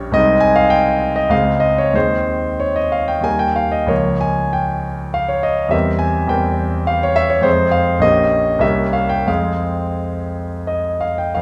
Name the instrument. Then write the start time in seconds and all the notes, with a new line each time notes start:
grand piano
Already playing: A#1 G3 C#4 G4 A#4 C#5
0.12 C2 G#3 C4 D#4 D#5
0.41 G#5
0.56 F5
0.70 G5
1.16 D#5
1.29 C#2 G#3 C4 G#4 F5
1.60 D#5
1.78 C#5
1.93 D#2 G#3 C4 G#4 C5
2.60 C#5
2.76 D#5
2.92 F5
3.08 G5
3.21 D#2 G3 A#3 A#4 G#5
3.39 G5
3.56 F5
3.72 D#5
3.87 C#2 F3 A#3 A#4 C#5
4.21 G#5
4.53 G5
5.14 F5
5.28 C#5
5.43 D#5
5.69 E2 G3 C4 A#4 E5
5.99 G#5
6.27 E2 G3 C4 A#4 G5
6.87 F5
7.03 C#5
7.16 E5
7.30 C#5
7.41 F2 G#3 C4 G#4 C5
7.72 F5
7.99 A#1 A#3 C#4 G4 D#5
8.59 C2 A#3 C#4 G4 E5
8.93 F5
9.09 G5
9.26 F2 G#3 C4 G#4 F5
10.67 D#5
11.01 F5
11.18 G5
11.35 F2 F5